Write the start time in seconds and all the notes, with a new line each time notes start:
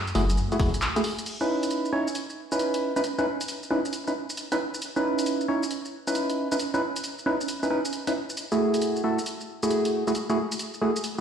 0.07 closed hi-hat, shaker
0.15 F#1 A3 E4 F#4 G#4, open hi-hat
0.30 closed hi-hat, shaker
0.37 shaker
0.52 A3 E4 F#4 G#4, closed hi-hat, shaker
0.59 F#1 A3 E4 F#4 G#4, kick, cross-stick, open hi-hat
0.74 closed hi-hat, shaker
0.82 clap, shaker
0.96 A3 E4 F#4 G#4, closed hi-hat, shaker
1.04 open hi-hat
1.19 closed hi-hat, shaker
1.26 closed hi-hat, crash, shaker
1.41 C#4 D#4 E4 B4, shaker
1.63 closed hi-hat, shaker
1.71 closed hi-hat, shaker
1.85 shaker
1.93 C#4 D#4 E4 C#5
2.07 shaker
2.15 closed hi-hat, shaker
2.30 shaker
2.52 C#4 D#4 E4 B4, shaker
2.59 closed hi-hat, shaker
2.74 closed hi-hat, shaker
2.96 C#4 D#4 E4 B4, shaker
3.04 closed hi-hat, shaker
3.18 C#4 D#4 E4 B4, shaker
3.41 closed hi-hat, shaker
3.48 closed hi-hat, shaker
3.63 shaker
3.71 C#4 D#4 E4 B4
3.85 shaker
3.93 closed hi-hat, shaker
4.07 C#4 D#4 E4 B4, shaker
4.30 shaker
4.37 closed hi-hat, shaker
4.52 C#4 D#4 E4 B4, closed hi-hat, shaker
4.74 shaker
4.82 closed hi-hat, shaker
4.96 C#4 D#4 E4 B4, shaker
5.19 closed hi-hat, shaker
5.26 closed hi-hat, shaker
5.41 shaker
5.48 C#4 D#4 E4 C#5
5.63 shaker
5.71 closed hi-hat, shaker
5.85 shaker
6.07 C#4 D#4 E4 B4, shaker
6.15 closed hi-hat, shaker
6.30 closed hi-hat, shaker
6.52 C#4 D#4 E4 B4, shaker
6.59 closed hi-hat, shaker
6.74 C#4 D#4 E4 B4, shaker
6.96 closed hi-hat, shaker
7.04 closed hi-hat, shaker
7.19 shaker
7.26 C#4 D#4 E4 B4
7.41 shaker
7.48 closed hi-hat, shaker
7.63 C#4 D#4 E4 B4, shaker
7.70 C#4 D#4 E4 B4
7.85 shaker
7.93 closed hi-hat, shaker
8.07 C#4 D#4 E4 B4, closed hi-hat, shaker
8.30 shaker
8.37 closed hi-hat, shaker
8.52 A3 E4 F#4 G#4, shaker
8.74 closed hi-hat, shaker
8.82 closed hi-hat, shaker
8.96 shaker
9.04 A3 E4 F#4 A4
9.19 shaker
9.26 closed hi-hat, shaker
9.41 shaker
9.63 A3 E4 F#4 G#4, shaker
9.70 closed hi-hat, shaker
9.85 closed hi-hat, shaker
10.07 A3 E4 F#4 G#4, shaker
10.15 closed hi-hat, shaker
10.30 A3 E4 F#4 G#4, shaker
10.52 closed hi-hat, shaker
10.59 closed hi-hat, shaker
10.74 shaker
10.82 A3 E4 F#4 G#4
10.96 shaker
11.04 closed hi-hat, shaker